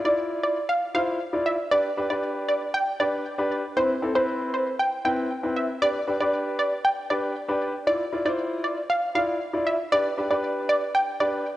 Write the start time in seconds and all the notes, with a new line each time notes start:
0.05 E4 F4 D5
0.43 D5
0.69 F5
0.95 E4 F4 C5 F5
1.33 E4 F4 D5
1.46 E5
1.72 D4 G4 B4 D5
1.97 D4 G4 B4
2.10 D4 G4 B4 D5
2.49 D5
2.74 G5
3.00 D4 G4 B4 D5
3.38 D4 G4 B4
3.77 C4 E4 B4 C5
4.02 C4 E4 A4
4.15 C4 E4 B4 C5
4.54 C5
4.79 G5
5.05 C4 E4 B4 G5
5.43 C4 E4 B4
5.56 E5
5.82 D4 G4 B4 D5
6.07 D4 G4 B4
6.20 D4 G4 B4 D5
6.59 D5
6.85 G5
7.10 D4 G4 B4 D5
7.48 D4 G4 B4
7.87 E4 F4 D5
8.12 E4 F4 D5
8.25 E4 F4 C5 D5
8.64 D5
8.90 F5
9.15 E4 F4 D5 F5
9.53 E4 F4 D5
9.67 E5
9.92 D4 G4 B4 D5
10.18 D4 G4 B4
10.30 D4 G4 B4 D5
10.69 D5
10.95 G5
11.20 D4 G4 B4 D5